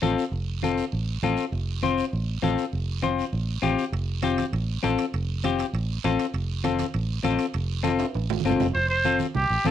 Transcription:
0.02 fingered electric bass A1, clean electric guitar C4 F4 A4, high conga, short guiro
0.18 short guiro
0.31 fingered electric bass F1, long guiro
0.62 clean electric guitar C4 F4 A4, high conga, short guiro
0.78 short guiro
0.92 fingered electric bass A1, long guiro
1.22 fingered electric bass A1, clean electric guitar C4 F4 A4, high conga, short guiro
1.37 short guiro
1.52 fingered electric bass F1, long guiro
1.83 clean electric guitar C4 F4 C5, high conga, short guiro
1.98 short guiro
2.13 fingered electric bass A1, long guiro
2.42 fingered electric bass A1, clean electric guitar C4 F4 A4, high conga, short guiro
2.58 short guiro
2.73 fingered electric bass F1, long guiro
3.02 clean electric guitar C4 F4 C5, high conga, short guiro
3.18 short guiro
3.33 fingered electric bass A1, long guiro
3.62 fingered electric bass A1, clean electric guitar C4 F4 G4, high conga, short guiro
3.79 short guiro
3.92 fingered electric bass F1, high timbale, long guiro
4.23 clean electric guitar C4 F4 G4, high conga, high timbale, short guiro
4.38 high conga, high timbale, short guiro
4.53 fingered electric bass A1, high timbale, long guiro
4.83 fingered electric bass A1, clean electric guitar C4 F4 A4, high conga, high timbale, short guiro
4.98 high timbale, short guiro
5.14 fingered electric bass F1, high timbale, long guiro
5.43 clean electric guitar C4 F4 G4, high conga, high timbale, short guiro
5.59 high timbale, short guiro
5.73 fingered electric bass A1, high timbale, long guiro
6.04 fingered electric bass A1, clean electric guitar C4 F4 A4, high conga, high timbale, short guiro
6.19 high timbale, short guiro
6.34 fingered electric bass F1, high timbale, long guiro
6.64 clean electric guitar C4 F4 A4, high conga, high timbale, short guiro
6.79 high conga, high timbale, short guiro
6.94 fingered electric bass A1, high timbale, long guiro
7.24 fingered electric bass A1, clean electric guitar C4 F4 A4, high conga, high timbale, short guiro
7.39 high timbale, short guiro
7.54 fingered electric bass F1, high timbale, long guiro
7.83 clean electric guitar C4 F4 A4, high conga, high timbale, short guiro
7.99 high timbale, short guiro
8.14 fingered electric bass A1, high timbale, long guiro
8.30 high conga, low timbale
8.40 high conga
8.44 fingered electric bass G1, clean electric guitar C4 F4 A4, short guiro
8.50 low conga
8.60 fingered electric bass F1, low conga, low timbale, short guiro
8.74 fingered electric bass F1, trumpet C5, long guiro
8.89 trumpet C5
9.05 clean electric guitar C4 F4 A4, high conga, short guiro
9.19 high conga, short guiro
9.35 fingered electric bass C2, trumpet G4, low conga, long guiro
9.50 fingered electric bass A1
9.64 fingered electric bass A1, clean electric guitar C4 F4 A4, trumpet A4, high conga, short guiro

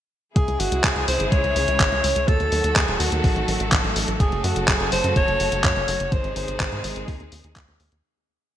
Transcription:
0.36 analog synth bass C#2, string section C#3 E3 G#3 E4 G#4, alto saxophone G#4, kick, closed hi-hat
0.48 analog synth bass C#2, closed hi-hat
0.60 analog synth bass G#1, alto saxophone F#4, open hi-hat
0.72 analog synth bass C#2, closed hi-hat
0.84 analog synth bass C#2, alto saxophone G#4, kick, clap, closed hi-hat
0.96 analog synth bass C#2, closed hi-hat
1.08 analog synth bass C#2, alto saxophone C5, open hi-hat
1.20 analog synth bass G#1, closed hi-hat
1.32 analog synth bass C#2, alto saxophone C#5, kick, closed hi-hat
1.44 analog synth bass C#2, closed hi-hat
1.56 analog synth bass C#2, open hi-hat
1.68 analog synth bass C#2, closed hi-hat
1.80 analog synth bass G#1, kick, clap, closed hi-hat
1.92 analog synth bass C#2, closed hi-hat
2.04 analog synth bass C#2, open hi-hat
2.16 analog synth bass C#2, closed hi-hat
2.28 analog synth bass D#2, string section D#3 F#3 A3 F#4 A4, alto saxophone A4, kick, closed hi-hat
2.40 analog synth bass D#2, closed hi-hat
2.52 analog synth bass D#2, open hi-hat
2.64 analog synth bass D#2, closed hi-hat
2.76 analog synth bass D#2, alto saxophone G#4, kick, clap, closed hi-hat
2.88 analog synth bass D#1, closed hi-hat
3.00 analog synth bass D#2, alto saxophone F#4, open hi-hat
3.12 analog synth bass D#2, closed hi-hat
3.24 analog synth bass A1, kick, open hi-hat
3.36 analog synth bass A1, closed hi-hat
3.48 analog synth bass A1, open hi-hat
3.60 analog synth bass A1, closed hi-hat
3.72 analog synth bass A1, kick, clap, closed hi-hat
3.84 analog synth bass A1, closed hi-hat
3.96 analog synth bass A1, open hi-hat
4.08 analog synth bass A1, closed hi-hat
4.20 analog synth bass F#1, string section C#3 F#3 F#4 A4, alto saxophone G#4, kick, closed hi-hat
4.32 analog synth bass F#1, closed hi-hat
4.44 analog synth bass F#2, alto saxophone F#4, open hi-hat
4.56 analog synth bass F#1, closed hi-hat
4.68 analog synth bass F#1, alto saxophone G#4, kick, clap, closed hi-hat
4.80 analog synth bass F#1, closed hi-hat
4.92 analog synth bass F#1, alto saxophone C5, open hi-hat
5.04 analog synth bass F#2, closed hi-hat
5.16 analog synth bass F#1, alto saxophone C#5, kick, closed hi-hat
5.28 analog synth bass F#1, closed hi-hat
5.40 analog synth bass F#1, open hi-hat
5.52 analog synth bass F#1, closed hi-hat
5.64 analog synth bass F#2, alto saxophone C#5, kick, clap, closed hi-hat
5.76 analog synth bass F#1, closed hi-hat
5.88 analog synth bass F#1, open hi-hat
6.00 analog synth bass F#1, closed hi-hat
6.12 analog synth bass G#1, string section C3 D#3 G#3 D#4 G#4, alto saxophone C5, kick, closed hi-hat
6.24 analog synth bass G#1, closed hi-hat
6.36 analog synth bass G#1, alto saxophone C5, open hi-hat
6.48 analog synth bass G#1, closed hi-hat
6.60 analog synth bass G#1, kick, clap, closed hi-hat
6.72 analog synth bass G#2, closed hi-hat
6.84 analog synth bass G#1, open hi-hat
6.96 analog synth bass G#1, closed hi-hat
7.08 analog synth bass D#2, kick, open hi-hat
7.20 analog synth bass D#2, closed hi-hat
7.32 analog synth bass D#2, open hi-hat
7.44 analog synth bass D#2, closed hi-hat
7.56 analog synth bass D#2, kick, clap, closed hi-hat
7.68 analog synth bass D#2, closed hi-hat
7.80 analog synth bass D#2, open hi-hat
7.92 analog synth bass D#2, closed hi-hat

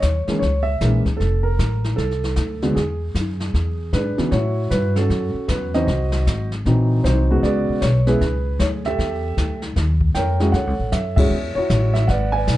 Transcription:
0.00 upright bass D#2, upright piano C#5, kick, snare, hi-hat pedal
0.27 upright piano E3 G#3 A#3 C#4, muted upright bass stroke, snare
0.39 upright bass C#2, upright piano C#5, brush sweep, kick, snare
0.63 upright piano E5
0.81 upright bass A#1, upright piano E3 G#3 A#3 C#4, kick, snare, hi-hat pedal
1.06 muted upright bass stroke, kick, snare
1.17 upright bass F1, upright piano A4, brush sweep, kick, snare
1.43 upright piano A#4
1.59 upright bass A1, kick, snare, hi-hat pedal
1.84 snare
1.96 upright bass C2, upright piano A4, brush sweep, kick, snare
2.11 snare
2.24 snare
2.36 upright bass D2, kick, snare, hi-hat pedal
2.62 upright piano D3 F#3 G#3 B3, snare
2.75 upright bass E2, upright piano G#4, brush sweep, kick, snare
3.15 upright bass F#2, kick, snare, hi-hat pedal
3.40 snare
3.54 upright bass E2, brush sweep, kick, snare
3.93 upright bass G#2, upright piano D4 G#4 B4, kick, snare, hi-hat pedal
4.18 upright piano C#3 E3 F#3 B3, muted upright bass stroke, snare
4.31 upright bass A2, upright piano E4 F#4 C#5, brush sweep, kick, snare
4.71 upright bass G2, upright piano B4, kick, snare, hi-hat pedal
4.96 upright piano C#4 F#4 A4, snare
5.10 upright bass F#2, brush sweep, kick, snare
5.34 muted upright bass stroke
5.48 upright bass E2, upright piano B4, kick, snare, hi-hat pedal
5.74 upright piano E3 F#3 C4 D#4 F#4 C5 D#5, snare
5.87 upright bass C2, brush sweep, kick, snare
6.12 snare
6.27 upright bass G#1, kick, snare, hi-hat pedal
6.52 snare
6.65 upright bass A#1, upright piano E3 F#3 C4 D#4, brush sweep, kick, snare
7.04 upright bass C2, upright piano D#4 F#4 C5, kick, snare, hi-hat pedal
7.30 upright piano C#3 G#3 B3 F#4
7.43 upright bass C#2, upright piano G#4 B4 D5, brush sweep, kick, snare
7.69 muted upright bass stroke
7.81 upright bass B1, upright piano C#5, kick, snare, hi-hat pedal
8.07 upright piano G#3 B3 C#4 E4 G#4 B4, snare
8.21 upright bass C#2, brush sweep, kick, snare
8.59 upright bass D2, upright piano C#5, kick, snare, hi-hat pedal
8.85 upright piano G4 A4 E5, snare
8.99 upright bass E2, brush sweep, kick, snare
9.37 upright bass D2, kick, snare, hi-hat pedal
9.62 snare
9.76 upright bass D#2, brush sweep, kick, snare
10.01 kick
10.15 upright bass F2, upright piano A#4 C#5 G5, snare, hi-hat pedal
10.40 upright piano G#3 C#4 E4 F#4, snare
10.52 upright bass D2, upright piano A4 C#5 F#5, brush sweep, kick, snare
10.67 upright bass C#2
10.79 upright bass A1
10.92 upright bass F#2, upright piano E5, kick, snare, hi-hat pedal
11.16 upright piano G#3 C#4 E4 F#4 G#4 C#5 E5, kick, ride
11.30 upright bass E2, brush sweep
11.55 upright piano E4 F#4 C#5, muted upright bass stroke
11.70 upright bass A1, kick, snare, hi-hat pedal
11.94 upright piano E5, snare
12.07 upright bass G#1, upright piano B4 D5 F#5, brush sweep, kick, snare
12.32 upright piano B4 D5 G#5
12.47 upright bass B1, kick, snare, hi-hat pedal

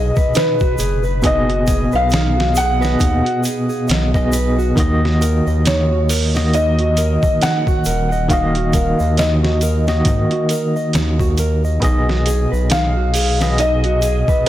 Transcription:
Already playing: analog synth bass B1, tine electric piano B2 B3 G#4 D#5, clean electric guitar G#4, felt piano D#5
0.16 clean electric guitar B4, kick, shaker
0.34 clean electric guitar D#4, felt piano B4, snare, closed hi-hat, shaker
0.60 clean electric guitar F#4, kick, shaker
0.78 analog synth bass F#1, clean electric guitar G#4, closed hi-hat, shaker
1.03 clean electric guitar B4, shaker
1.22 tine electric piano B2 B3 G#4, clean electric guitar D#4, felt piano D#5, kick, closed hi-hat, shaker
1.27 tine electric piano D#5
1.49 clean electric guitar F#4, closed hi-hat
1.67 clean electric guitar G#4, kick, closed hi-hat, shaker
1.92 analog synth bass B1, clean electric guitar B4, felt piano F5, shaker
2.10 clean electric guitar D#4, snare, closed hi-hat, shaker
2.37 clean electric guitar F#4, snare
2.55 clean electric guitar G#4, felt piano F#5, closed hi-hat, shaker
2.80 tine electric piano B2 B3 G#4 D#5, clean electric guitar B4, shaker
2.85 snare
2.99 analog synth bass D#2, clean electric guitar D#4, kick, closed hi-hat, shaker
3.25 clean electric guitar F#4, closed hi-hat
3.43 clean electric guitar G#4, closed hi-hat, shaker
3.69 clean electric guitar G#4, shaker
3.88 analog synth bass B1, clean electric guitar D#5, snare, closed hi-hat, shaker
4.14 tine electric piano B2 B3 G#4 D#5, clean electric guitar D#5, kick, shaker
4.32 clean electric guitar B4, closed hi-hat, shaker
4.58 clean electric guitar F#4, shaker
4.76 analog synth bass D#2, tine electric piano D#3 A#3 F#4, clean electric guitar D#4, kick, closed hi-hat, shaker
4.80 tine electric piano D#5
5.03 clean electric guitar F#4, snare
5.21 clean electric guitar A#4, closed hi-hat, shaker
5.47 analog synth bass D#2, clean electric guitar D#5, shaker
5.65 clean electric guitar D#4, felt piano C#5, snare, closed hi-hat, shaker
5.91 clean electric guitar F#4
6.09 clean electric guitar A#4, open hi-hat, shaker
6.34 tine electric piano D#3 A#3 F#4 D#5, clean electric guitar D#5, snare, shaker
6.54 clean electric guitar D#4, felt piano D#5, closed hi-hat, shaker
6.79 clean electric guitar F#4, closed hi-hat
6.97 clean electric guitar A#4, closed hi-hat, shaker
7.23 clean electric guitar D#5, kick, shaker
7.42 clean electric guitar D#4, felt piano F#5, snare, closed hi-hat, shaker
7.67 clean electric guitar F#4, kick, shaker
7.85 analog synth bass D#1, clean electric guitar A#4, closed hi-hat, shaker
8.12 clean electric guitar D#5, shaker
8.28 tine electric piano D#3 A#3 F#4, clean electric guitar D#4, felt piano F5, kick, closed hi-hat, shaker
8.33 tine electric piano D#5
8.55 clean electric guitar F#4, closed hi-hat
8.73 clean electric guitar A#4, kick, closed hi-hat, shaker
8.99 analog synth bass D#2, clean electric guitar D#5, shaker
9.17 clean electric guitar D#4, felt piano D#5, snare, closed hi-hat, shaker
9.43 clean electric guitar F#4, snare
9.61 clean electric guitar A#4, closed hi-hat, shaker
9.87 tine electric piano D#3 A#3 F#4 D#5, clean electric guitar D#5, snare, shaker
10.05 analog synth bass G#2, clean electric guitar D#4, kick, closed hi-hat, shaker
10.31 clean electric guitar F#4, closed hi-hat
10.49 clean electric guitar A#4, closed hi-hat, shaker
10.76 clean electric guitar D#5, shaker
10.93 analog synth bass D#2, clean electric guitar D#4, snare, closed hi-hat, shaker
11.20 clean electric guitar F#4, kick, shaker
11.38 clean electric guitar A#4, closed hi-hat, shaker
11.64 clean electric guitar D#5, shaker
11.80 analog synth bass B1, tine electric piano B2 B3 G#4, clean electric guitar D#4, kick, closed hi-hat, shaker
11.84 tine electric piano D#5
12.09 clean electric guitar F#4, snare
12.26 clean electric guitar G#4, closed hi-hat, shaker
12.52 analog synth bass B1, clean electric guitar B4, shaker
12.70 clean electric guitar D#4, felt piano F5, snare, closed hi-hat, shaker
12.97 clean electric guitar F#4
13.14 clean electric guitar G#4, open hi-hat, shaker
13.40 tine electric piano B2 B3 G#4 D#5, clean electric guitar B4, snare, shaker
13.58 clean electric guitar D#4, felt piano D#5, closed hi-hat, shaker
13.84 clean electric guitar F#4, closed hi-hat
14.02 clean electric guitar G#4, closed hi-hat, shaker
14.28 clean electric guitar B4, kick, shaker

